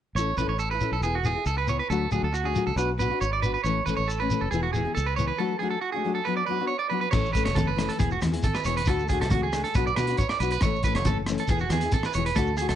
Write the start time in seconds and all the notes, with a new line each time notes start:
0.15 A1 C#4 E4 A4 C#5, shekere
0.37 A1 C#4 E4 A4 B4, shekere
0.48 A1 C#5
0.59 A4, shekere
0.71 E4 A4 B4
0.80 C#4 E4 A4, shekere
0.92 B1 A4
1.01 E1 B3 E4 G#4, shekere
1.15 F#4
1.24 B3 E4 G#4, shekere
1.35 E4 G#4
1.46 C#2 A4, shekere
1.58 B4
1.67 B3 E4 G#4 C#5, shekere
1.79 B4
1.90 D2 F#3 A3 D4 F#4 A4, shekere
2.11 D2 F#3 A3 D4 F#4 G#4, shekere
2.23 D2 A4
2.34 F#4, shekere
2.44 A3 D4 F#4 G#4
2.54 F#3 A3 D4 F#4, shekere
2.67 C#2 A4
2.76 B1 B3 D4 F#4 B4, shekere
2.98 B3 D4 F#4 B4, shekere
3.10 D4 F#4
3.21 G#1 C#5, shekere
3.33 D5
3.42 B3 D4 F#4 B4, shekere
3.54 B4
3.64 A1 E3 A3 C#4 A4 C#5, shekere
3.86 A1 E3 A3 C#4 A4 B4, shekere
3.97 A1 C#5
4.08 A4, shekere
4.20 A3 C#4 A4 B4
4.30 E3 A3 C#4 A4, shekere
4.41 F1 A4
4.51 E1 E3 B3 E4 G#4, shekere
4.55 G#4
4.63 F#4
4.73 E3 B3 E4 G#4, shekere
4.77 G#4
4.85 B3 E4 G#4
4.95 C#2 A4, shekere
5.06 B4
5.16 E3 B3 E4 G#4 C#5, shekere
5.28 B4
5.38 F#3 A3 D4 F#4 A4
5.59 F#3 A3 D4 F#4 G#4
5.71 A4
5.81 F#4
5.92 D4 F#4 G#4
5.97 A3
6.05 F#3 A3 D4 F#4
6.15 A4
6.25 F#3 B3 D4 F#4 B4
6.37 D5
6.46 F#3 B3 D4 B4
6.51 F#4
6.60 B3 D4 F#4
6.67 C#5
6.79 D5
6.90 F#3 B3 D4 F#4 B4
7.01 B4
7.11 A1 E3 A3 C#4 A4 C#5, kick, cross-stick, crash, shekere
7.15 muted conga
7.26 shekere
7.33 E3 A3 C#4 A4 B4, kick, closed hi-hat, muted conga, shekere
7.45 F#1 C#5, cross-stick, closed hi-hat
7.54 E3 A3 C#4 A4, kick, closed hi-hat, high conga, shekere
7.67 B4
7.76 E3 A3 C#4 A4, cross-stick, closed hi-hat, shekere
7.89 A4, closed hi-hat, shekere
7.98 E1 E3 B3 E4 G#4, kick, closed hi-hat, muted conga, shekere
8.11 F#4, shekere
8.21 E2 E3 B3 E4 G#4, muted clean electric guitar stroke, cross-stick, closed hi-hat, high conga, shekere
8.32 B3 E4 G#4, closed hi-hat, shekere
8.43 A4, kick, closed hi-hat, muted conga, high conga, shekere
8.54 B4, cross-stick
8.64 E1 E3 B3 E4 G#4 C#5, closed hi-hat, shekere
8.76 B4, closed hi-hat, shekere
8.85 D2 A3 D4 F#4 A4, kick, cross-stick, closed hi-hat, muted conga, shekere
8.99 shekere
9.08 A3 D4 F#4 G#4, kick, closed hi-hat, muted conga, shekere
9.21 C#2 A4, cross-stick, closed hi-hat
9.30 A3 D4 F#4, kick, closed hi-hat, high conga, low conga, shekere
9.43 G#4
9.53 A3 D4, muted nylon-string guitar stroke, cross-stick, closed hi-hat, shekere
9.64 A4, closed hi-hat, shekere
9.74 B1 B3 D4 F#4 B4, kick, closed hi-hat, muted conga, shekere
9.87 D5, shekere
9.96 B2 B3 D4 F#4 B4, cross-stick, closed hi-hat, high conga, shekere
10.07 D4 F#4, closed hi-hat, shekere
10.17 C#5, kick, closed hi-hat, muted conga, high conga, shekere
10.29 D5, cross-stick
10.40 B1 B3 D4 F#4 B4, closed hi-hat, shekere
10.51 B4, closed hi-hat, shekere
10.61 A1 E3 A3 C#4 A4 C#5, kick, cross-stick, closed hi-hat, muted conga, shekere
10.76 shekere
10.83 E3 A3 C#4 A4 B4, kick, closed hi-hat, muted conga, shekere
10.95 F#1 C#5, cross-stick, closed hi-hat
11.05 E3 A3 C#4 A4, kick, closed hi-hat, high conga, shekere
11.26 E3 A3 C#4, cross-stick, closed hi-hat, shekere
11.31 A4
11.38 A4, closed hi-hat, shekere
11.48 E1 E3 B3 E4 G#4, kick, closed hi-hat, muted conga, shekere
11.52 G#4
11.59 F#4, shekere
11.70 E2 E3 B3 E4 G#4, cross-stick, closed hi-hat, high conga, shekere
11.81 G#4, closed hi-hat, shekere
11.85 B3 E4
11.92 A4, kick, closed hi-hat, muted conga, high conga, shekere
12.03 B4, cross-stick
12.13 E1 E3 B3 C#5, closed hi-hat, shekere
12.18 E4 G#4
12.26 B4, closed hi-hat, shekere
12.35 D2 A3 D4 F#4 A4, kick, cross-stick, closed hi-hat, muted conga, shekere
12.47 shekere
12.57 A3 G#4, closed hi-hat, muted conga, shekere
12.61 F#4
12.69 C#2 A4, cross-stick, closed hi-hat, shekere